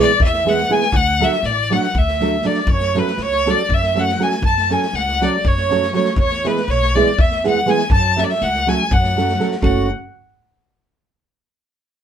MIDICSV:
0, 0, Header, 1, 6, 480
1, 0, Start_track
1, 0, Key_signature, 3, "minor"
1, 0, Tempo, 499584
1, 888, Time_signature, 7, 3, 24, 8
1, 6404, Tempo, 493016
1, 11633, End_track
2, 0, Start_track
2, 0, Title_t, "Accordion"
2, 0, Program_c, 0, 21
2, 0, Note_on_c, 0, 74, 80
2, 189, Note_off_c, 0, 74, 0
2, 209, Note_on_c, 0, 76, 100
2, 431, Note_off_c, 0, 76, 0
2, 473, Note_on_c, 0, 78, 91
2, 680, Note_off_c, 0, 78, 0
2, 684, Note_on_c, 0, 80, 102
2, 889, Note_on_c, 0, 78, 89
2, 899, Note_off_c, 0, 80, 0
2, 1151, Note_off_c, 0, 78, 0
2, 1156, Note_on_c, 0, 76, 80
2, 1384, Note_off_c, 0, 76, 0
2, 1399, Note_on_c, 0, 74, 77
2, 1653, Note_off_c, 0, 74, 0
2, 1654, Note_on_c, 0, 78, 82
2, 1879, Note_off_c, 0, 78, 0
2, 1903, Note_on_c, 0, 76, 82
2, 2362, Note_off_c, 0, 76, 0
2, 2371, Note_on_c, 0, 74, 85
2, 2584, Note_off_c, 0, 74, 0
2, 2601, Note_on_c, 0, 73, 80
2, 2849, Note_off_c, 0, 73, 0
2, 2877, Note_on_c, 0, 71, 75
2, 3086, Note_off_c, 0, 71, 0
2, 3109, Note_on_c, 0, 73, 90
2, 3349, Note_off_c, 0, 73, 0
2, 3364, Note_on_c, 0, 74, 75
2, 3575, Note_off_c, 0, 74, 0
2, 3592, Note_on_c, 0, 76, 100
2, 3822, Note_off_c, 0, 76, 0
2, 3831, Note_on_c, 0, 78, 85
2, 4042, Note_off_c, 0, 78, 0
2, 4071, Note_on_c, 0, 80, 89
2, 4274, Note_off_c, 0, 80, 0
2, 4281, Note_on_c, 0, 81, 96
2, 4511, Note_off_c, 0, 81, 0
2, 4546, Note_on_c, 0, 80, 85
2, 4759, Note_off_c, 0, 80, 0
2, 4775, Note_on_c, 0, 78, 78
2, 5021, Note_off_c, 0, 78, 0
2, 5029, Note_on_c, 0, 74, 75
2, 5246, Note_off_c, 0, 74, 0
2, 5254, Note_on_c, 0, 73, 93
2, 5714, Note_off_c, 0, 73, 0
2, 5731, Note_on_c, 0, 73, 78
2, 5926, Note_off_c, 0, 73, 0
2, 5952, Note_on_c, 0, 73, 88
2, 6183, Note_off_c, 0, 73, 0
2, 6213, Note_on_c, 0, 71, 75
2, 6429, Note_off_c, 0, 71, 0
2, 6444, Note_on_c, 0, 73, 90
2, 6694, Note_off_c, 0, 73, 0
2, 6695, Note_on_c, 0, 74, 81
2, 6918, Note_off_c, 0, 74, 0
2, 6919, Note_on_c, 0, 76, 96
2, 7164, Note_off_c, 0, 76, 0
2, 7169, Note_on_c, 0, 78, 89
2, 7375, Note_off_c, 0, 78, 0
2, 7400, Note_on_c, 0, 80, 89
2, 7618, Note_off_c, 0, 80, 0
2, 7619, Note_on_c, 0, 81, 99
2, 7860, Note_off_c, 0, 81, 0
2, 7868, Note_on_c, 0, 76, 64
2, 7924, Note_on_c, 0, 74, 61
2, 7929, Note_off_c, 0, 76, 0
2, 7985, Note_off_c, 0, 74, 0
2, 8002, Note_on_c, 0, 76, 64
2, 8111, Note_off_c, 0, 76, 0
2, 8122, Note_on_c, 0, 78, 86
2, 8376, Note_off_c, 0, 78, 0
2, 8386, Note_on_c, 0, 80, 81
2, 8606, Note_off_c, 0, 80, 0
2, 8620, Note_on_c, 0, 78, 88
2, 9137, Note_off_c, 0, 78, 0
2, 9289, Note_on_c, 0, 66, 71
2, 9535, Note_off_c, 0, 66, 0
2, 11633, End_track
3, 0, Start_track
3, 0, Title_t, "Violin"
3, 0, Program_c, 1, 40
3, 0, Note_on_c, 1, 74, 116
3, 194, Note_off_c, 1, 74, 0
3, 232, Note_on_c, 1, 76, 101
3, 470, Note_on_c, 1, 78, 105
3, 485, Note_off_c, 1, 76, 0
3, 703, Note_on_c, 1, 80, 107
3, 717, Note_off_c, 1, 78, 0
3, 924, Note_on_c, 1, 78, 123
3, 938, Note_off_c, 1, 80, 0
3, 1195, Note_on_c, 1, 76, 103
3, 1210, Note_off_c, 1, 78, 0
3, 1402, Note_on_c, 1, 74, 114
3, 1417, Note_off_c, 1, 76, 0
3, 1658, Note_on_c, 1, 78, 94
3, 1672, Note_off_c, 1, 74, 0
3, 1902, Note_on_c, 1, 76, 94
3, 1917, Note_off_c, 1, 78, 0
3, 2367, Note_on_c, 1, 74, 84
3, 2381, Note_off_c, 1, 76, 0
3, 2591, Note_on_c, 1, 73, 105
3, 2605, Note_off_c, 1, 74, 0
3, 2869, Note_on_c, 1, 71, 94
3, 2883, Note_off_c, 1, 73, 0
3, 3094, Note_on_c, 1, 73, 115
3, 3109, Note_off_c, 1, 71, 0
3, 3367, Note_on_c, 1, 74, 103
3, 3382, Note_off_c, 1, 73, 0
3, 3590, Note_on_c, 1, 76, 93
3, 3605, Note_off_c, 1, 74, 0
3, 3839, Note_on_c, 1, 78, 91
3, 3853, Note_off_c, 1, 76, 0
3, 4057, Note_on_c, 1, 80, 91
3, 4072, Note_off_c, 1, 78, 0
3, 4267, Note_off_c, 1, 80, 0
3, 4279, Note_on_c, 1, 81, 95
3, 4538, Note_on_c, 1, 80, 87
3, 4553, Note_off_c, 1, 81, 0
3, 4755, Note_on_c, 1, 78, 107
3, 4769, Note_off_c, 1, 80, 0
3, 5028, Note_on_c, 1, 74, 91
3, 5042, Note_off_c, 1, 78, 0
3, 5262, Note_on_c, 1, 73, 94
3, 5277, Note_off_c, 1, 74, 0
3, 5711, Note_off_c, 1, 73, 0
3, 5717, Note_on_c, 1, 73, 73
3, 5919, Note_off_c, 1, 73, 0
3, 5952, Note_on_c, 1, 73, 104
3, 6216, Note_on_c, 1, 71, 91
3, 6230, Note_off_c, 1, 73, 0
3, 6441, Note_on_c, 1, 73, 117
3, 6455, Note_off_c, 1, 71, 0
3, 6684, Note_on_c, 1, 74, 98
3, 6699, Note_off_c, 1, 73, 0
3, 6935, Note_on_c, 1, 76, 88
3, 6949, Note_off_c, 1, 74, 0
3, 7172, Note_off_c, 1, 76, 0
3, 7189, Note_on_c, 1, 78, 86
3, 7413, Note_on_c, 1, 80, 99
3, 7428, Note_off_c, 1, 78, 0
3, 7622, Note_off_c, 1, 80, 0
3, 7628, Note_on_c, 1, 81, 114
3, 7894, Note_on_c, 1, 76, 86
3, 7908, Note_off_c, 1, 81, 0
3, 7938, Note_on_c, 1, 74, 68
3, 7952, Note_off_c, 1, 76, 0
3, 7998, Note_on_c, 1, 76, 100
3, 8013, Note_off_c, 1, 74, 0
3, 8115, Note_on_c, 1, 78, 109
3, 8129, Note_off_c, 1, 76, 0
3, 8374, Note_on_c, 1, 80, 104
3, 8389, Note_off_c, 1, 78, 0
3, 8610, Note_on_c, 1, 78, 96
3, 8625, Note_off_c, 1, 80, 0
3, 9132, Note_off_c, 1, 78, 0
3, 9279, Note_on_c, 1, 78, 81
3, 9529, Note_off_c, 1, 78, 0
3, 11633, End_track
4, 0, Start_track
4, 0, Title_t, "Nylon-string guitar"
4, 0, Program_c, 2, 24
4, 0, Note_on_c, 2, 52, 75
4, 0, Note_on_c, 2, 56, 76
4, 0, Note_on_c, 2, 59, 71
4, 0, Note_on_c, 2, 64, 68
4, 0, Note_on_c, 2, 68, 86
4, 103, Note_off_c, 2, 52, 0
4, 105, Note_off_c, 2, 59, 0
4, 106, Note_off_c, 2, 56, 0
4, 110, Note_off_c, 2, 68, 0
4, 111, Note_off_c, 2, 64, 0
4, 430, Note_on_c, 2, 52, 67
4, 438, Note_on_c, 2, 56, 62
4, 442, Note_on_c, 2, 59, 61
4, 445, Note_on_c, 2, 64, 54
4, 449, Note_on_c, 2, 68, 84
4, 574, Note_off_c, 2, 52, 0
4, 578, Note_off_c, 2, 56, 0
4, 581, Note_off_c, 2, 59, 0
4, 581, Note_off_c, 2, 64, 0
4, 584, Note_off_c, 2, 68, 0
4, 663, Note_on_c, 2, 52, 66
4, 666, Note_on_c, 2, 56, 58
4, 673, Note_on_c, 2, 59, 58
4, 678, Note_on_c, 2, 64, 69
4, 682, Note_on_c, 2, 68, 80
4, 803, Note_off_c, 2, 52, 0
4, 806, Note_off_c, 2, 56, 0
4, 807, Note_off_c, 2, 59, 0
4, 811, Note_off_c, 2, 64, 0
4, 812, Note_off_c, 2, 68, 0
4, 1152, Note_on_c, 2, 54, 59
4, 1159, Note_on_c, 2, 57, 59
4, 1163, Note_on_c, 2, 62, 65
4, 1168, Note_on_c, 2, 66, 70
4, 1170, Note_on_c, 2, 69, 70
4, 1295, Note_off_c, 2, 54, 0
4, 1298, Note_off_c, 2, 57, 0
4, 1301, Note_off_c, 2, 62, 0
4, 1302, Note_off_c, 2, 66, 0
4, 1304, Note_off_c, 2, 69, 0
4, 1635, Note_on_c, 2, 54, 72
4, 1641, Note_on_c, 2, 57, 59
4, 1647, Note_on_c, 2, 62, 69
4, 1653, Note_on_c, 2, 66, 61
4, 1653, Note_on_c, 2, 69, 76
4, 1783, Note_off_c, 2, 54, 0
4, 1786, Note_off_c, 2, 57, 0
4, 1790, Note_off_c, 2, 62, 0
4, 1790, Note_off_c, 2, 66, 0
4, 1792, Note_off_c, 2, 69, 0
4, 2117, Note_on_c, 2, 54, 60
4, 2124, Note_on_c, 2, 57, 57
4, 2128, Note_on_c, 2, 62, 64
4, 2132, Note_on_c, 2, 66, 62
4, 2135, Note_on_c, 2, 69, 68
4, 2260, Note_off_c, 2, 54, 0
4, 2263, Note_off_c, 2, 57, 0
4, 2266, Note_off_c, 2, 62, 0
4, 2267, Note_off_c, 2, 66, 0
4, 2269, Note_off_c, 2, 69, 0
4, 2347, Note_on_c, 2, 54, 70
4, 2353, Note_on_c, 2, 57, 55
4, 2354, Note_on_c, 2, 62, 69
4, 2361, Note_on_c, 2, 66, 60
4, 2364, Note_on_c, 2, 69, 83
4, 2488, Note_off_c, 2, 54, 0
4, 2491, Note_off_c, 2, 57, 0
4, 2491, Note_off_c, 2, 62, 0
4, 2495, Note_off_c, 2, 66, 0
4, 2495, Note_off_c, 2, 69, 0
4, 2832, Note_on_c, 2, 54, 74
4, 2839, Note_on_c, 2, 57, 59
4, 2845, Note_on_c, 2, 61, 64
4, 2847, Note_on_c, 2, 66, 56
4, 2856, Note_on_c, 2, 69, 73
4, 2977, Note_off_c, 2, 54, 0
4, 2981, Note_off_c, 2, 57, 0
4, 2982, Note_off_c, 2, 61, 0
4, 2985, Note_off_c, 2, 66, 0
4, 2987, Note_off_c, 2, 69, 0
4, 3321, Note_on_c, 2, 54, 77
4, 3325, Note_on_c, 2, 57, 59
4, 3330, Note_on_c, 2, 61, 64
4, 3335, Note_on_c, 2, 66, 71
4, 3339, Note_on_c, 2, 69, 82
4, 3467, Note_off_c, 2, 54, 0
4, 3469, Note_off_c, 2, 57, 0
4, 3472, Note_off_c, 2, 61, 0
4, 3474, Note_off_c, 2, 66, 0
4, 3476, Note_off_c, 2, 69, 0
4, 3793, Note_on_c, 2, 54, 69
4, 3799, Note_on_c, 2, 57, 58
4, 3804, Note_on_c, 2, 61, 62
4, 3810, Note_on_c, 2, 66, 63
4, 3814, Note_on_c, 2, 69, 78
4, 3939, Note_off_c, 2, 54, 0
4, 3940, Note_off_c, 2, 57, 0
4, 3944, Note_off_c, 2, 61, 0
4, 3947, Note_off_c, 2, 66, 0
4, 3948, Note_off_c, 2, 69, 0
4, 4025, Note_on_c, 2, 54, 76
4, 4032, Note_on_c, 2, 57, 61
4, 4037, Note_on_c, 2, 61, 68
4, 4039, Note_on_c, 2, 66, 71
4, 4044, Note_on_c, 2, 69, 79
4, 4166, Note_off_c, 2, 54, 0
4, 4170, Note_off_c, 2, 57, 0
4, 4172, Note_off_c, 2, 61, 0
4, 4175, Note_off_c, 2, 66, 0
4, 4175, Note_off_c, 2, 69, 0
4, 4509, Note_on_c, 2, 54, 68
4, 4514, Note_on_c, 2, 57, 55
4, 4519, Note_on_c, 2, 61, 54
4, 4526, Note_on_c, 2, 66, 61
4, 4530, Note_on_c, 2, 69, 70
4, 4655, Note_off_c, 2, 54, 0
4, 4657, Note_off_c, 2, 57, 0
4, 4660, Note_off_c, 2, 61, 0
4, 4663, Note_off_c, 2, 66, 0
4, 4664, Note_off_c, 2, 69, 0
4, 5003, Note_on_c, 2, 54, 74
4, 5008, Note_on_c, 2, 57, 59
4, 5010, Note_on_c, 2, 61, 72
4, 5014, Note_on_c, 2, 66, 63
4, 5020, Note_on_c, 2, 69, 78
4, 5147, Note_off_c, 2, 54, 0
4, 5148, Note_off_c, 2, 57, 0
4, 5150, Note_off_c, 2, 61, 0
4, 5152, Note_off_c, 2, 66, 0
4, 5155, Note_off_c, 2, 69, 0
4, 5472, Note_on_c, 2, 54, 65
4, 5477, Note_on_c, 2, 57, 61
4, 5484, Note_on_c, 2, 61, 64
4, 5492, Note_on_c, 2, 69, 70
4, 5493, Note_on_c, 2, 66, 54
4, 5616, Note_off_c, 2, 54, 0
4, 5618, Note_off_c, 2, 57, 0
4, 5622, Note_off_c, 2, 61, 0
4, 5624, Note_off_c, 2, 66, 0
4, 5626, Note_off_c, 2, 69, 0
4, 5699, Note_on_c, 2, 54, 69
4, 5703, Note_on_c, 2, 57, 65
4, 5709, Note_on_c, 2, 61, 61
4, 5715, Note_on_c, 2, 66, 61
4, 5723, Note_on_c, 2, 69, 79
4, 5841, Note_off_c, 2, 54, 0
4, 5843, Note_off_c, 2, 57, 0
4, 5846, Note_off_c, 2, 61, 0
4, 5849, Note_off_c, 2, 66, 0
4, 5853, Note_off_c, 2, 69, 0
4, 6189, Note_on_c, 2, 52, 62
4, 6196, Note_on_c, 2, 56, 59
4, 6198, Note_on_c, 2, 59, 60
4, 6202, Note_on_c, 2, 64, 69
4, 6211, Note_on_c, 2, 68, 79
4, 6331, Note_off_c, 2, 52, 0
4, 6333, Note_off_c, 2, 56, 0
4, 6336, Note_off_c, 2, 59, 0
4, 6337, Note_off_c, 2, 64, 0
4, 6342, Note_off_c, 2, 68, 0
4, 6679, Note_on_c, 2, 52, 76
4, 6686, Note_on_c, 2, 56, 67
4, 6693, Note_on_c, 2, 59, 60
4, 6697, Note_on_c, 2, 68, 74
4, 6698, Note_on_c, 2, 64, 69
4, 6824, Note_off_c, 2, 52, 0
4, 6827, Note_off_c, 2, 56, 0
4, 6830, Note_off_c, 2, 59, 0
4, 6832, Note_off_c, 2, 64, 0
4, 6833, Note_off_c, 2, 68, 0
4, 7157, Note_on_c, 2, 52, 69
4, 7161, Note_on_c, 2, 56, 62
4, 7162, Note_on_c, 2, 59, 61
4, 7173, Note_on_c, 2, 64, 64
4, 7173, Note_on_c, 2, 68, 77
4, 7299, Note_off_c, 2, 52, 0
4, 7301, Note_off_c, 2, 56, 0
4, 7302, Note_off_c, 2, 59, 0
4, 7306, Note_off_c, 2, 68, 0
4, 7308, Note_off_c, 2, 64, 0
4, 7372, Note_on_c, 2, 52, 78
4, 7374, Note_on_c, 2, 56, 67
4, 7379, Note_on_c, 2, 59, 69
4, 7384, Note_on_c, 2, 64, 67
4, 7389, Note_on_c, 2, 68, 76
4, 7519, Note_off_c, 2, 56, 0
4, 7520, Note_off_c, 2, 52, 0
4, 7523, Note_off_c, 2, 59, 0
4, 7526, Note_off_c, 2, 64, 0
4, 7527, Note_off_c, 2, 68, 0
4, 7867, Note_on_c, 2, 54, 78
4, 7872, Note_on_c, 2, 57, 70
4, 7874, Note_on_c, 2, 61, 64
4, 7878, Note_on_c, 2, 66, 55
4, 7885, Note_on_c, 2, 69, 74
4, 8015, Note_off_c, 2, 54, 0
4, 8016, Note_off_c, 2, 57, 0
4, 8018, Note_off_c, 2, 61, 0
4, 8020, Note_off_c, 2, 66, 0
4, 8023, Note_off_c, 2, 69, 0
4, 8352, Note_on_c, 2, 54, 79
4, 8357, Note_on_c, 2, 57, 71
4, 8359, Note_on_c, 2, 61, 58
4, 8362, Note_on_c, 2, 66, 68
4, 8367, Note_on_c, 2, 69, 81
4, 8503, Note_off_c, 2, 54, 0
4, 8506, Note_off_c, 2, 57, 0
4, 8506, Note_off_c, 2, 61, 0
4, 8508, Note_off_c, 2, 66, 0
4, 8510, Note_off_c, 2, 69, 0
4, 8834, Note_on_c, 2, 54, 69
4, 8840, Note_on_c, 2, 57, 58
4, 8845, Note_on_c, 2, 61, 60
4, 8847, Note_on_c, 2, 66, 63
4, 8850, Note_on_c, 2, 69, 66
4, 8979, Note_off_c, 2, 54, 0
4, 8983, Note_off_c, 2, 57, 0
4, 8985, Note_off_c, 2, 61, 0
4, 8985, Note_off_c, 2, 66, 0
4, 8988, Note_off_c, 2, 69, 0
4, 9056, Note_on_c, 2, 54, 72
4, 9061, Note_on_c, 2, 57, 63
4, 9062, Note_on_c, 2, 61, 58
4, 9064, Note_on_c, 2, 66, 67
4, 9071, Note_on_c, 2, 69, 73
4, 9204, Note_off_c, 2, 54, 0
4, 9204, Note_off_c, 2, 57, 0
4, 9206, Note_off_c, 2, 66, 0
4, 9207, Note_off_c, 2, 61, 0
4, 9210, Note_off_c, 2, 69, 0
4, 9285, Note_on_c, 2, 57, 81
4, 9288, Note_on_c, 2, 66, 73
4, 9290, Note_on_c, 2, 61, 67
4, 9290, Note_on_c, 2, 69, 81
4, 9533, Note_off_c, 2, 57, 0
4, 9533, Note_off_c, 2, 66, 0
4, 9533, Note_off_c, 2, 69, 0
4, 9535, Note_off_c, 2, 61, 0
4, 11633, End_track
5, 0, Start_track
5, 0, Title_t, "Upright bass"
5, 0, Program_c, 3, 32
5, 193, Note_on_c, 3, 40, 105
5, 611, Note_off_c, 3, 40, 0
5, 899, Note_on_c, 3, 38, 120
5, 1192, Note_off_c, 3, 38, 0
5, 1372, Note_on_c, 3, 33, 92
5, 1671, Note_off_c, 3, 33, 0
5, 1876, Note_on_c, 3, 38, 87
5, 2295, Note_off_c, 3, 38, 0
5, 2563, Note_on_c, 3, 42, 118
5, 2861, Note_off_c, 3, 42, 0
5, 3053, Note_on_c, 3, 37, 91
5, 3351, Note_off_c, 3, 37, 0
5, 3547, Note_on_c, 3, 42, 100
5, 3968, Note_off_c, 3, 42, 0
5, 4248, Note_on_c, 3, 42, 105
5, 4544, Note_off_c, 3, 42, 0
5, 4740, Note_on_c, 3, 37, 91
5, 5035, Note_off_c, 3, 37, 0
5, 5238, Note_on_c, 3, 42, 92
5, 5653, Note_off_c, 3, 42, 0
5, 5933, Note_on_c, 3, 40, 104
5, 6225, Note_off_c, 3, 40, 0
5, 6416, Note_on_c, 3, 35, 102
5, 6713, Note_off_c, 3, 35, 0
5, 6908, Note_on_c, 3, 40, 101
5, 7329, Note_off_c, 3, 40, 0
5, 7619, Note_on_c, 3, 42, 110
5, 7912, Note_off_c, 3, 42, 0
5, 8109, Note_on_c, 3, 37, 103
5, 8403, Note_off_c, 3, 37, 0
5, 8596, Note_on_c, 3, 42, 114
5, 9014, Note_off_c, 3, 42, 0
5, 9300, Note_on_c, 3, 30, 107
5, 9540, Note_off_c, 3, 30, 0
5, 11633, End_track
6, 0, Start_track
6, 0, Title_t, "Drums"
6, 192, Note_on_c, 9, 36, 91
6, 288, Note_off_c, 9, 36, 0
6, 320, Note_on_c, 9, 38, 32
6, 416, Note_off_c, 9, 38, 0
6, 451, Note_on_c, 9, 38, 33
6, 547, Note_off_c, 9, 38, 0
6, 553, Note_on_c, 9, 38, 30
6, 649, Note_off_c, 9, 38, 0
6, 782, Note_on_c, 9, 38, 33
6, 878, Note_off_c, 9, 38, 0
6, 889, Note_on_c, 9, 36, 94
6, 985, Note_off_c, 9, 36, 0
6, 1151, Note_on_c, 9, 38, 32
6, 1247, Note_off_c, 9, 38, 0
6, 1268, Note_on_c, 9, 38, 27
6, 1364, Note_off_c, 9, 38, 0
6, 1377, Note_on_c, 9, 38, 38
6, 1473, Note_off_c, 9, 38, 0
6, 1649, Note_on_c, 9, 38, 33
6, 1745, Note_off_c, 9, 38, 0
6, 1763, Note_on_c, 9, 38, 30
6, 1859, Note_off_c, 9, 38, 0
6, 1873, Note_on_c, 9, 36, 85
6, 1969, Note_off_c, 9, 36, 0
6, 2000, Note_on_c, 9, 38, 29
6, 2096, Note_off_c, 9, 38, 0
6, 2116, Note_on_c, 9, 38, 36
6, 2212, Note_off_c, 9, 38, 0
6, 2325, Note_on_c, 9, 38, 33
6, 2421, Note_off_c, 9, 38, 0
6, 2441, Note_on_c, 9, 38, 31
6, 2537, Note_off_c, 9, 38, 0
6, 2566, Note_on_c, 9, 36, 96
6, 2662, Note_off_c, 9, 36, 0
6, 2693, Note_on_c, 9, 38, 27
6, 2789, Note_off_c, 9, 38, 0
6, 2827, Note_on_c, 9, 38, 32
6, 2923, Note_off_c, 9, 38, 0
6, 2947, Note_on_c, 9, 38, 32
6, 3043, Note_off_c, 9, 38, 0
6, 3052, Note_on_c, 9, 38, 37
6, 3148, Note_off_c, 9, 38, 0
6, 3188, Note_on_c, 9, 38, 25
6, 3284, Note_off_c, 9, 38, 0
6, 3322, Note_on_c, 9, 38, 29
6, 3418, Note_off_c, 9, 38, 0
6, 3555, Note_on_c, 9, 36, 82
6, 3651, Note_off_c, 9, 36, 0
6, 3684, Note_on_c, 9, 38, 30
6, 3780, Note_off_c, 9, 38, 0
6, 3801, Note_on_c, 9, 38, 31
6, 3897, Note_off_c, 9, 38, 0
6, 3927, Note_on_c, 9, 38, 31
6, 4023, Note_off_c, 9, 38, 0
6, 4040, Note_on_c, 9, 38, 33
6, 4136, Note_off_c, 9, 38, 0
6, 4144, Note_on_c, 9, 38, 30
6, 4240, Note_off_c, 9, 38, 0
6, 4254, Note_on_c, 9, 36, 82
6, 4350, Note_off_c, 9, 36, 0
6, 4398, Note_on_c, 9, 38, 28
6, 4494, Note_off_c, 9, 38, 0
6, 4518, Note_on_c, 9, 38, 31
6, 4614, Note_off_c, 9, 38, 0
6, 4636, Note_on_c, 9, 38, 31
6, 4732, Note_off_c, 9, 38, 0
6, 4751, Note_on_c, 9, 38, 32
6, 4847, Note_off_c, 9, 38, 0
6, 4883, Note_on_c, 9, 38, 27
6, 4979, Note_off_c, 9, 38, 0
6, 5004, Note_on_c, 9, 38, 32
6, 5100, Note_off_c, 9, 38, 0
6, 5234, Note_on_c, 9, 36, 90
6, 5330, Note_off_c, 9, 36, 0
6, 5354, Note_on_c, 9, 38, 33
6, 5451, Note_off_c, 9, 38, 0
6, 5476, Note_on_c, 9, 38, 31
6, 5572, Note_off_c, 9, 38, 0
6, 5593, Note_on_c, 9, 38, 36
6, 5690, Note_off_c, 9, 38, 0
6, 5702, Note_on_c, 9, 38, 30
6, 5799, Note_off_c, 9, 38, 0
6, 5811, Note_on_c, 9, 38, 32
6, 5907, Note_off_c, 9, 38, 0
6, 5923, Note_on_c, 9, 36, 95
6, 6019, Note_off_c, 9, 36, 0
6, 6055, Note_on_c, 9, 38, 27
6, 6151, Note_off_c, 9, 38, 0
6, 6188, Note_on_c, 9, 38, 40
6, 6284, Note_off_c, 9, 38, 0
6, 6305, Note_on_c, 9, 38, 30
6, 6402, Note_off_c, 9, 38, 0
6, 6434, Note_on_c, 9, 38, 35
6, 6531, Note_off_c, 9, 38, 0
6, 6557, Note_on_c, 9, 38, 30
6, 6655, Note_off_c, 9, 38, 0
6, 6685, Note_on_c, 9, 38, 32
6, 6783, Note_off_c, 9, 38, 0
6, 6910, Note_on_c, 9, 36, 105
6, 7008, Note_off_c, 9, 36, 0
6, 7029, Note_on_c, 9, 38, 31
6, 7127, Note_off_c, 9, 38, 0
6, 7155, Note_on_c, 9, 38, 34
6, 7253, Note_off_c, 9, 38, 0
6, 7381, Note_on_c, 9, 38, 33
6, 7479, Note_off_c, 9, 38, 0
6, 7488, Note_on_c, 9, 38, 27
6, 7586, Note_off_c, 9, 38, 0
6, 7605, Note_on_c, 9, 36, 103
6, 7703, Note_off_c, 9, 36, 0
6, 7876, Note_on_c, 9, 38, 30
6, 7973, Note_off_c, 9, 38, 0
6, 7991, Note_on_c, 9, 38, 26
6, 8088, Note_off_c, 9, 38, 0
6, 8102, Note_on_c, 9, 38, 37
6, 8200, Note_off_c, 9, 38, 0
6, 8235, Note_on_c, 9, 38, 27
6, 8333, Note_off_c, 9, 38, 0
6, 8365, Note_on_c, 9, 38, 32
6, 8462, Note_off_c, 9, 38, 0
6, 8592, Note_on_c, 9, 36, 105
6, 8690, Note_off_c, 9, 36, 0
6, 8716, Note_on_c, 9, 38, 31
6, 8814, Note_off_c, 9, 38, 0
6, 8845, Note_on_c, 9, 38, 34
6, 8942, Note_off_c, 9, 38, 0
6, 8953, Note_on_c, 9, 38, 32
6, 9051, Note_off_c, 9, 38, 0
6, 9063, Note_on_c, 9, 38, 33
6, 9161, Note_off_c, 9, 38, 0
6, 9176, Note_on_c, 9, 38, 29
6, 9274, Note_off_c, 9, 38, 0
6, 9285, Note_on_c, 9, 36, 93
6, 9383, Note_off_c, 9, 36, 0
6, 11633, End_track
0, 0, End_of_file